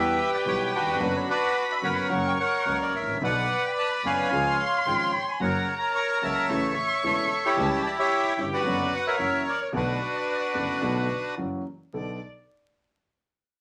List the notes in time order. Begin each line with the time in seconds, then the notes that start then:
Already playing: E2 E3 G3 B3 F#4 G4 B4 E5 G5
0.34 D5
0.45 B1 B2 E3 G3 B3 F#4 C#5
0.75 D4 F#4 B4
0.80 D#2
0.86 E2
0.94 F2
0.99 F#1 F#2 D3 F#3 B3 F#4 B5
1.17 C#5
1.30 F#4 B4 D5
1.72 E5
1.82 F#1 F#2 D3 F#3 B3 F#4 A#4 C#5 F#5
2.09 F#1 F#2 C#3 F#3 A#3 F#4 C#6
2.27 G5
2.40 A#4 C#5 F#5
2.65 C#2 C#3 F#3 A#3 F#4
2.82 D5
2.93 A1 E5
3.01 G#1
3.08 A1
3.14 A#1
3.21 B1 B2 D3 F#3 B3 F#4 B4 D5 F#5 B5
3.65 G5
3.78 A5
4.03 F#1 F#2 D3 F#3 B3 F#4 C#5 F5 G#5
4.31 C#2 C#3 F3 G#3 F4 C6
4.86 G#1 G#2 C#3 F3 G#3 F4 C#5 G5
5.28 G#5
5.40 F#1 F#2 C#3 F#3 A#3 F#4 A#4 C#5 F#5 A#5
5.81 A#5
5.96 C#6
6.22 C#2 C#3 F#3 A#3 F#4 C#5 E5 A5
6.49 A1 A2 C#3 E3 A3 E4 C#6
7.03 E1 E2 C#3 E3 A3 E4 A4 C#5 E5
7.45 E4 G4 C#5
7.57 C#2 C#3 E3 G3 E4 A5
7.86 D5
7.99 G4 C#5 E5
8.04 A5
8.10 G5
8.37 G1 G2 C#3 E3 G3 E4 C#5
8.53 F#4 B4 D5
8.64 F#1 F#2 D3 F#3 B3 F#4 F#5
8.94 F#5
9.07 A#4 C#5 E5
9.18 F#1 F#2 E3 F#3 A#3 C#4 F#4 C#5
9.49 D5
9.62 C#5
9.72 B1 B2 D3 A3 B3 D4 F#4 B4 D5
10.54 F#1 F#2 D3 A3 B3 F#4
10.81 B1 B2 D3 A3 B3 F#4
11.37 F#1 F#2 E3 F#3 A#3 C#4 F#4
11.93 B1 B3 D4 A4 D5